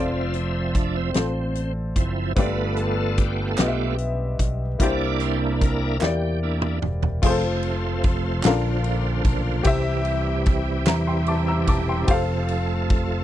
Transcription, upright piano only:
Already playing: C4 F4 A4 D5
1.13 C4 F4 A4 C5
2.36 G2 B3 F4 G4 D5
3.58 B3 F4 G4 D#5
3.68 E5
4.79 C3 A#3 E4 G4
4.83 C5
6.00 A#3 E4 G4
6.04 D5
7.22 F4 G#4
7.26 C5
7.30 A4
8.43 A#2 C#4 F4 A4 A#4
8.47 D4 F5
9.63 C3 G4 C5 E5
10.88 E5 A#5
11.07 G5 C6
11.28 A5 D6
11.48 A#5 E6
11.69 A5 D6
11.89 G5 C6
12.07 G4 C5 F5
12.13 A4

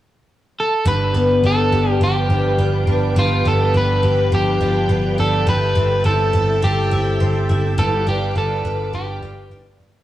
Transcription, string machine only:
0.86 B4 F5 G5 D6
5.48 A4 E5 A5
7.77 B4 F5 D6

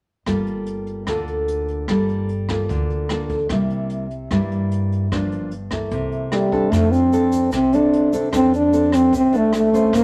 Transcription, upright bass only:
0.26 G1
1.07 D2
1.88 G1
2.69 D2
3.50 C2
4.31 G2
5.12 G1
5.92 C2
6.72 F2
7.53 C2
8.33 F2
9.13 C2
9.93 A#1

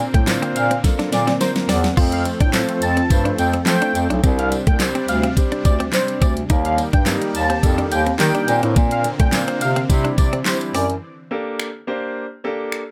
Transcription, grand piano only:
Already playing: A#3 C4 D4 F4 A#4
0.27 A#3 C4 D4 F4 C5
0.84 A#3 C4 D4 F4 A4
1.40 A#3 C4 D4 F4 A#4
1.97 A3 C4 F4 A4 C5
2.54 A3 C4 F4 A4 C5
3.10 A3 C4 F4 A4 C5
3.67 A3 C4 F4 A4 C5
4.24 G3 C4 D4 G4 C5
4.80 G3 C4 D4 G4 C5
5.37 G3 C4 D4 G4 C5
5.93 G3 C4 D4 G4 C5
6.50 G3 A#3 D#4 G4 A#4
7.06 G3 A#3 D#4 G4 A#4
7.63 G3 A#3 D#4 G4 A4
8.20 G3 A#3 D#4 G4 A#4
8.48 A#3 C4 D4 F4 A#4
9.33 A#3 C4 D4 F4 C5
9.89 G3 C4 D4 E4 G4
10.46 G3 C4 D4 E4 G4
11.31 A#3 D4 G4 A4
11.87 A#3 D4 G4 C5
12.44 A#3 D4 G4 A4

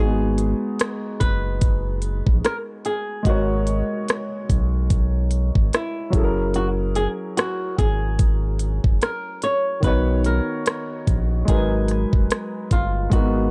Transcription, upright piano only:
Already playing: G#3 D#4 F#4
0.00 B3 G#4
3.23 G#3 F#4 D#5
3.28 A#4 C#5
6.10 F#3 C#4 E4
6.15 G#4 A4
6.23 A#4
9.80 D#3 B3 D#4
9.85 F#4 C#5
11.45 F#3 G#3 D#4
11.50 A#4 B4
13.10 G#3 D#4 F#4
13.15 B3 A#4

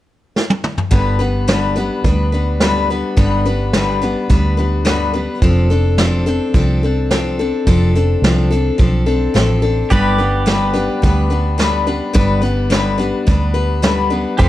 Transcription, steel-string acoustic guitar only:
0.91 G2 D3 G3 B3 D4 B4
1.19 G3 B3 D4 B4
1.48 G2 D3 G3 B3 D4 B4
1.76 G3 B3 D4 B4
2.05 G3 B3 D4 B4
2.32 G3 B3 D4 B4
2.61 G2 D3 G3 B3 D4 B4
2.90 G3 B3 D4 B4
3.17 G2 D3 G3 B3 D4 B4
3.46 G3 B3 D4 B4
3.74 G2 D3 G3 B3 D4 B4
4.02 G3 B3 D4 B4
4.30 G3 B3 D4 B4
4.57 G3 B3 D4 B4
4.85 G2 D3 G3 B3 D4 B4
5.14 G3 B3 D4 B4
5.42 F3 C4 D4 A4
5.70 C4 D4 A4
5.98 F3 C4 D4 A4
6.26 C4 D4 A4
6.54 F3 C4 D4 A4
6.83 C4 D4 A4
7.11 F3 C4 D4 A4
7.39 C4 D4 A4
7.67 F3 C4 D4 A4
7.95 C4 D4 A4
8.24 F3 C4 D4 A4
8.51 C4 D4 A4
8.78 F3 C4 D4 A4
9.06 C4 D4 A4
9.34 F3 C4 D4 A4
9.62 C4 D4 A4
9.90 G2 D3 G3 B3 D4 B4
10.18 G3 B3 D4 B4
10.46 G2 D3 G3 B3 D4 B4
10.74 G3 B3 D4 B4
11.02 G3 B3 D4 B4
11.30 G3 B3 D4 B4
11.58 G2 D3 G3 B3 D4 B4
11.87 G3 B3 D4 B4
12.13 G2 D3 G3 B3 D4 B4
12.42 G3 B3 D4 B4
12.70 G2 D3 G3 B3 D4 B4
12.98 G3 B3 D4 B4
13.27 G3 B3 D4 B4
13.54 G3 B3 D4 B4
13.82 G2 D3 G3 B3 D4 B4
14.10 G3 B3 D4 B4
14.38 F3 C4 F4 A4

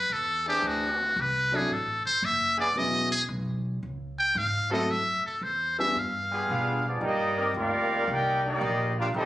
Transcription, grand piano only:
1.52 F#3 C4 D4 E4 A4
2.76 F#3 B3 C#4 E4 G#4
4.71 F#3 A3 C4 E4 A4
5.78 G3 B3 D4 F4 G#4

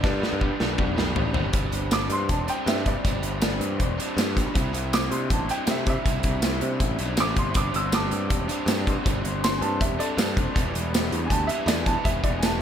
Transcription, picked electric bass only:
0.04 G2
0.33 G2
0.61 B1
0.79 B1
0.98 B1
1.15 A1
1.35 G1
1.53 G1
1.72 G1
2.10 G2
2.29 E1
2.66 G2
2.86 G2
3.05 G1
3.22 G1
3.60 G2
3.80 E1
4.17 G2
4.37 B1
4.55 C2
4.73 C2
5.11 C3
5.30 A1
5.68 C3
5.86 C3
6.05 C2
6.24 C2
6.62 C3
6.80 A1
7.00 B1
7.18 A1
7.37 G1
7.56 G1
7.74 G1
8.12 G2
8.30 E1
8.66 G2
8.87 G2
9.06 G1
9.24 G1
9.61 G2
9.80 E1
10.17 G2
10.37 F1
10.56 E1
10.74 E1
11.11 E2
11.31 D2
11.66 E2
11.87 E2
12.05 E1
12.24 E1

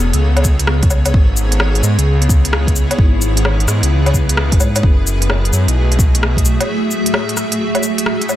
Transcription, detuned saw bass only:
0.00 E1
0.14 C#2
0.68 C#2
1.06 C#2
1.14 G#1
1.83 G#2
1.99 C#2
2.99 G#1
3.68 G#2
3.83 C#2
4.52 F#1
4.60 G#2
4.83 F#1
5.53 F#2
5.68 B1

